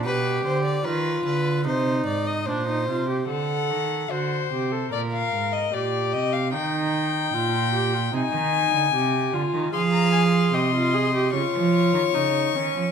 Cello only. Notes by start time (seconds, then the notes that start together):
0.05 B2
0.45 D3
0.86 D#3
1.25 D3
1.65 C3
2.07 G#2
2.47 A#2
2.88 C3
3.28 D3
3.70 D#3
4.11 D3
4.52 C3
4.93 A#2
5.33 G#2
5.73 A#2
6.14 C3
6.54 D#3
7.34 A#2
8.13 C3
8.33 D#3
8.73 D3
8.93 C3
9.33 D3
9.53 D#3
9.73 F3
10.53 C3
11.33 C#3
11.53 F3
11.94 D#3
12.14 C#3
12.55 D#3
12.75 F3